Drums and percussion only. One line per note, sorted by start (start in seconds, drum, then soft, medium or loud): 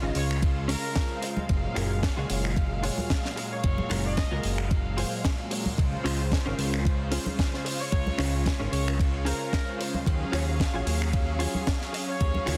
0.15 open hi-hat loud
0.31 finger snap medium
0.42 kick loud
0.42 ride medium
0.69 open hi-hat loud
0.96 kick loud
0.96 snare loud
0.96 ride medium
1.22 open hi-hat loud
1.37 high conga medium
1.49 kick loud
1.49 ride medium
1.76 finger snap medium
1.76 open hi-hat loud
2.03 kick loud
2.03 snare loud
2.03 ride medium
2.30 open hi-hat loud
2.45 finger snap medium
2.56 kick loud
2.56 ride medium
2.83 open hi-hat loud
2.98 high conga loud
3.10 kick loud
3.10 snare loud
3.10 ride medium
3.25 snare soft
3.37 open hi-hat loud
3.64 kick loud
3.64 ride medium
3.78 high conga medium
3.90 finger snap medium
3.90 open hi-hat loud
3.90 low conga medium
4.17 kick loud
4.17 snare loud
4.17 ride medium
4.43 open hi-hat loud
4.58 finger snap medium
4.71 kick loud
4.71 ride medium
4.98 open hi-hat loud
5.25 kick loud
5.25 snare loud
5.25 ride medium
5.51 open hi-hat loud
5.66 high conga loud
5.78 kick loud
5.78 ride medium
6.06 finger snap medium
6.06 open hi-hat loud
6.32 kick loud
6.32 snare loud
6.32 ride medium
6.59 open hi-hat loud
6.74 finger snap medium
6.85 kick loud
6.85 ride medium
7.12 open hi-hat loud
7.26 high conga loud
7.39 kick loud
7.39 snare loud
7.39 ride medium
7.54 snare soft
7.66 open hi-hat loud
7.92 kick loud
7.92 ride medium
8.07 high conga medium
8.19 finger snap medium
8.19 open hi-hat loud
8.46 kick loud
8.46 snare loud
8.46 ride medium
8.73 open hi-hat loud
8.88 finger snap medium
8.99 kick loud
8.99 ride medium
9.26 open hi-hat loud
9.53 kick loud
9.53 snare loud
9.53 ride medium
9.81 open hi-hat loud
9.94 high conga loud
10.06 kick loud
10.06 ride medium
10.33 finger snap medium
10.33 open hi-hat loud
10.60 kick loud
10.60 snare loud
10.60 ride medium
10.87 open hi-hat loud
11.02 finger snap medium
11.13 kick loud
11.13 ride medium
11.40 open hi-hat loud
11.55 high conga loud
11.67 kick loud
11.67 snare loud
11.67 ride medium
11.81 snare soft
11.94 open hi-hat loud
12.21 kick loud
12.21 ride medium
12.35 high conga medium
12.47 finger snap medium
12.47 open hi-hat loud
12.47 low conga medium